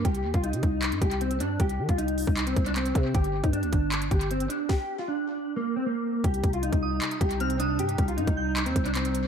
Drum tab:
HH |xx-xxxx-xxxxxxx-|xx-xxxo-xxxxxxx-|xx-xxxx-xxxxxxx-|----------------|
CP |--------x-------|--------x---x---|--------x-------|----------------|
SD |----------------|----------------|----------------|o---------------|
BD |o--o--o---o-----|o--o---o--o---o-|o--o--o---o-----|o---------------|

HH |xxxxxx--xxxxxxx-|xxxxxx--xxxxxxx-|
CP |--------x-------|--------x---x---|
SD |----------------|----------------|
BD |o-o--o----o-----|--o--o----o-----|